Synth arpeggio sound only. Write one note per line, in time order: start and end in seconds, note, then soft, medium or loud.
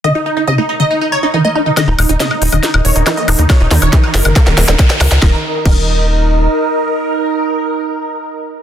0.04 0.08 D#3 loud
0.37 0.42 D#4 medium
0.48 0.53 C#3 loud
0.58 0.66 A#3 medium
0.80 0.85 D#3 medium
1.23 1.28 D#4 medium
1.34 1.37 E3 loud
1.45 1.53 A#3 medium
1.55 1.59 D#4 loud
1.66 1.71 D#3 medium
1.77 1.80 D#3 loud
2.09 2.15 D#4 medium
2.20 2.25 C#3 loud
2.31 2.39 A#3 medium
2.52 2.58 D#3 medium
2.96 3.01 D#4 medium
3.06 3.10 E3 loud
3.17 3.25 A#3 medium
3.28 3.31 D#4 loud
3.39 3.44 D#3 medium
3.71 3.74 D#3 loud
3.82 3.87 D#4 medium
3.93 3.96 E3 loud
4.25 4.30 D#3 medium
4.36 4.44 A#3 loud
4.47 4.52 D#3 medium
4.68 4.74 D#3 medium
5.22 5.34 D#3 medium
5.66 5.78 D#3 medium